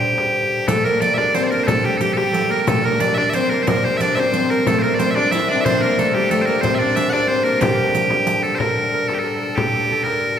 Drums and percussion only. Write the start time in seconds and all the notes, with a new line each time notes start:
0.02 frame drum
0.18 frame drum
0.52 frame drum
0.68 riq, frame drum
0.86 riq
1.02 riq
1.18 frame drum
1.35 riq
1.51 riq, frame drum
1.68 riq, frame drum
1.85 riq
2.01 riq
2.17 frame drum
2.34 riq
2.51 riq, frame drum
2.67 riq, frame drum
2.84 riq
3.00 riq
3.17 frame drum
3.33 riq
3.50 riq, frame drum
3.67 riq, frame drum
3.84 frame drum
4.00 riq, frame drum
4.17 riq, frame drum
4.34 riq
4.51 riq
4.67 riq, frame drum
4.84 riq
5.00 riq
5.16 frame drum
5.32 riq
5.49 riq, frame drum
5.66 riq, frame drum
5.82 riq
5.99 riq
6.15 frame drum
6.31 riq
6.47 riq, frame drum
6.63 riq, frame drum
6.80 riq
6.97 riq
7.14 frame drum
7.46 riq, frame drum
7.61 riq, frame drum
7.78 riq
7.95 riq
8.10 frame drum
8.27 riq, frame drum
8.44 riq
8.60 frame drum
8.76 frame drum
8.93 frame drum
9.09 frame drum
9.57 frame drum
9.74 frame drum
9.90 frame drum
10.06 frame drum
10.23 frame drum